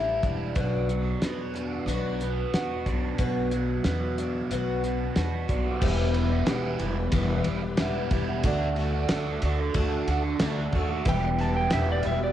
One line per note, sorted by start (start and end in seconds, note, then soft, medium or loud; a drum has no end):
0.00 0.18 A1 medium
0.00 0.23 E3 medium
0.00 0.23 G3 medium
0.00 0.57 G3 medium
0.00 0.22 D4 medium
0.00 0.23 D4 medium
0.00 0.21 E4 medium
0.23 0.51 E1 medium
0.23 0.55 E3 soft
0.23 0.55 G3 medium
0.23 0.55 D4 medium
0.23 0.56 E4 medium
0.23 kick medium
0.23 closed hi-hat medium
0.55 1.12 B1 loud
0.55 0.89 B2 medium
0.55 0.89 F#3 medium
0.55 0.89 B3 medium
0.55 0.89 D4 medium
0.55 0.88 F#4 medium
0.55 kick loud
0.55 closed hi-hat medium
0.89 2.54 F#3 medium
0.89 1.23 B3 medium
0.89 1.23 D4 medium
0.89 1.22 F#4 medium
0.89 closed hi-hat medium
1.22 1.56 F#3 medium
1.22 1.55 B3 medium
1.22 1.54 D4 medium
1.22 1.53 F#4 medium
1.22 snare medium
1.22 closed hi-hat medium
1.54 1.87 B3 soft
1.54 1.87 D4 soft
1.54 1.87 F#4 medium
1.54 closed hi-hat medium
1.86 2.43 B1 medium
1.86 2.21 B2 medium
1.86 2.21 F#3 medium
1.86 2.21 B3 medium
1.86 2.20 D4 medium
1.86 2.19 F#4 medium
1.86 closed hi-hat medium
2.20 2.52 B3 soft
2.20 2.54 D4 soft
2.20 2.53 F#4 medium
2.20 closed hi-hat medium
2.54 2.82 E2 medium
2.54 2.87 F#3 medium
2.54 2.87 B3 medium
2.54 2.87 D4 medium
2.54 2.86 F#4 medium
2.54 snare loud
2.54 closed hi-hat medium
2.86 3.14 B1 medium
2.86 3.18 B3 soft
2.86 3.18 D4 medium
2.86 3.19 F#4 medium
2.86 kick medium
2.86 closed hi-hat medium
3.19 3.76 B1 medium
3.19 3.52 B2 medium
3.19 3.52 F#3 medium
3.19 3.52 B3 medium
3.19 3.52 D4 medium
3.19 3.52 F#4 loud
3.19 kick loud
3.19 closed hi-hat medium
3.51 5.17 F#3 medium
3.51 3.85 B3 medium
3.51 3.86 D4 medium
3.51 3.85 F#4 medium
3.51 closed hi-hat medium
3.84 4.41 E2 medium
3.84 4.18 F#3 medium
3.84 4.18 B3 medium
3.84 4.18 D4 medium
3.84 4.17 F#4 medium
3.84 snare loud
3.84 closed hi-hat medium
4.18 4.51 B3 soft
4.18 4.51 D4 soft
4.18 4.51 F#4 soft
4.18 closed hi-hat medium
4.51 5.07 B1 medium
4.51 4.84 B2 medium
4.51 4.84 F#3 medium
4.51 4.84 B3 medium
4.51 4.83 D4 medium
4.51 4.82 F#4 medium
4.51 closed hi-hat medium
4.83 5.16 B3 soft
4.83 5.16 D4 soft
4.83 5.16 F#4 soft
4.83 closed hi-hat medium
5.16 5.45 E2 medium
5.16 5.49 F#3 medium
5.16 5.49 B3 medium
5.16 5.48 D4 medium
5.16 5.47 F#4 medium
5.16 snare loud
5.16 closed hi-hat medium
5.48 5.77 B1 medium
5.48 5.81 B3 soft
5.48 5.82 D4 medium
5.48 5.81 F#4 soft
5.48 kick medium
5.48 closed hi-hat medium
5.54 5.76 A3 medium
5.54 5.77 B3 medium
5.59 5.78 C4 medium
5.59 5.80 D4 medium
5.66 5.82 E4 medium
5.66 5.83 F4 medium
5.70 5.83 G4 medium
5.70 5.86 A4 medium
5.76 8.39 G4 medium
5.76 5.84 B4 medium
5.76 5.88 C5 medium
5.81 6.45 E1 loud
5.81 6.14 E2 medium
5.81 6.15 B2 medium
5.81 6.14 E3 medium
5.81 6.15 G3 medium
5.81 6.14 B3 loud
5.81 8.43 B3 medium
5.81 6.30 E4 medium
5.81 8.43 E4 medium
5.81 6.13 G4 loud
5.81 8.42 G4 medium
5.81 8.40 B4 medium
5.81 8.43 B4 medium
5.81 5.90 D5 medium
5.81 8.41 E5 medium
5.81 kick loud
5.81 crash loud
6.14 6.45 E3 medium
6.14 6.45 G3 medium
6.14 6.46 B3 medium
6.14 6.47 G4 medium
6.14 ride medium
6.31 6.47 E3 medium
6.31 6.47 G3 medium
6.31 6.48 B3 medium
6.31 6.48 E4 medium
6.46 6.79 E1 medium
6.46 7.13 E2 medium
6.46 7.13 B2 loud
6.46 6.80 E3 medium
6.46 6.79 G3 medium
6.46 6.79 B3 medium
6.46 6.81 E4 loud
6.46 6.78 G4 medium
6.46 snare loud
6.46 ride medium
6.79 7.12 E1 medium
6.79 7.12 E3 soft
6.79 7.12 G3 medium
6.79 7.12 B3 medium
6.79 6.97 E4 medium
6.79 7.12 G4 medium
6.79 ride medium
6.98 muted overdriven electric guitar stroke soft
7.12 7.45 E1 loud
7.12 7.45 E2 medium
7.12 7.45 B2 medium
7.12 7.46 E3 loud
7.12 7.44 G3 medium
7.12 7.44 B3 medium
7.12 7.47 E4 medium
7.12 7.44 G4 medium
7.12 kick medium
7.12 ride loud
7.44 7.78 E1 medium
7.44 7.76 E3 soft
7.44 7.77 G3 soft
7.44 7.77 B3 medium
7.44 7.62 E4 medium
7.44 7.78 G4 medium
7.44 ride medium
7.63 muted overdriven electric guitar stroke medium
7.77 8.10 E1 medium
7.77 8.42 E2 medium
7.77 8.43 B2 medium
7.77 8.11 E3 medium
7.77 8.11 G3 medium
7.77 8.11 B3 medium
7.77 8.10 G4 medium
7.77 snare loud
7.77 ride medium
7.82 8.13 E4 loud
8.11 8.43 E1 medium
8.11 8.43 E3 medium
8.11 8.44 G3 medium
8.11 8.44 B3 medium
8.11 8.27 E4 medium
8.11 8.44 G4 medium
8.11 kick medium
8.11 ride medium
8.28 8.42 E3 medium
8.28 8.43 G3 medium
8.28 8.43 B3 medium
8.28 8.42 E4 medium
8.43 9.07 D2 loud
8.43 8.77 D3 medium
8.43 8.76 A3 medium
8.43 11.03 A3 medium
8.43 8.75 D4 loud
8.43 11.04 D4 medium
8.43 10.36 F#4 medium
8.43 11.03 F#4 medium
8.43 8.74 F#4 loud
8.43 11.04 A4 medium
8.43 10.37 A4 medium
8.43 kick loud
8.43 ride loud
8.47 10.38 D5 medium
8.75 9.09 A3 medium
8.75 9.09 D4 medium
8.75 9.09 F#4 medium
8.75 ride medium
8.93 9.10 A3 medium
8.93 9.09 D4 medium
8.93 9.11 F#4 medium
9.09 9.42 D2 medium
9.09 9.42 D3 medium
9.09 9.43 A3 medium
9.09 9.42 D4 medium
9.09 9.42 F#4 medium
9.09 snare loud
9.09 ride loud
9.42 9.74 D2 medium
9.42 9.74 D3 medium
9.42 9.73 A3 soft
9.42 9.73 D4 medium
9.42 9.74 F#4 medium
9.42 ride medium
9.60 muted overdriven electric guitar stroke medium
9.74 10.07 D2 loud
9.74 10.07 D3 medium
9.74 10.07 A3 medium
9.74 10.07 D4 medium
9.74 10.07 F#4 loud
9.74 kick medium
9.74 ride loud
10.07 10.39 D2 medium
10.07 10.39 D3 medium
10.07 10.41 A3 soft
10.07 10.41 D4 soft
10.07 10.41 F#4 medium
10.07 ride medium
10.24 muted overdriven electric guitar stroke medium
10.40 10.72 D2 medium
10.40 10.74 D3 medium
10.40 10.74 A3 medium
10.40 10.74 D4 medium
10.40 11.06 F#4 medium
10.40 10.74 F#4 medium
10.40 11.06 A4 medium
10.40 11.07 D5 medium
10.40 snare loud
10.40 ride loud
10.72 11.05 D#2 medium
10.72 11.03 D3 medium
10.72 11.07 D4 medium
10.72 11.07 F#4 medium
10.72 kick medium
10.72 ride medium
10.76 11.07 A3 soft
10.89 11.05 A3 medium
10.89 11.04 D4 medium
10.89 11.04 F#4 medium
11.04 11.69 E1 loud
11.04 11.39 E2 medium
11.04 11.39 B2 medium
11.04 11.40 E3 medium
11.04 11.40 G3 loud
11.04 12.32 B3 medium
11.04 12.32 E4 medium
11.04 12.32 G4 medium
11.04 12.32 B4 medium
11.04 12.32 E5 medium
11.04 kick loud
11.04 ride medium
11.09 11.40 B3 medium
11.09 11.38 G4 loud
11.09 11.39 G5 loud
11.38 11.69 E3 medium
11.38 11.70 G3 medium
11.38 11.71 B3 medium
11.38 11.72 G4 medium
11.38 11.56 A5 medium
11.38 ride medium
11.54 11.70 E3 medium
11.54 11.71 G3 medium
11.54 11.72 B3 medium
11.54 11.72 G4 medium
11.54 11.72 G5 medium
11.70 12.04 E1 loud
11.70 12.32 E2 loud
11.70 12.32 B2 loud
11.70 12.04 E3 medium
11.70 12.04 G3 medium
11.70 12.03 B3 medium
11.70 12.03 G4 medium
11.70 11.88 E5 medium
11.70 snare loud
11.70 ride loud
11.92 12.06 D5 medium
12.01 12.20 E3 medium
12.01 12.32 G3 medium
12.01 12.32 B3 medium
12.01 12.32 G4 medium
12.01 ride medium
12.06 12.32 E1 medium
12.06 12.32 E3 soft
12.06 12.21 E5 medium
12.20 12.32 D5 medium
12.20 muted overdriven electric guitar stroke soft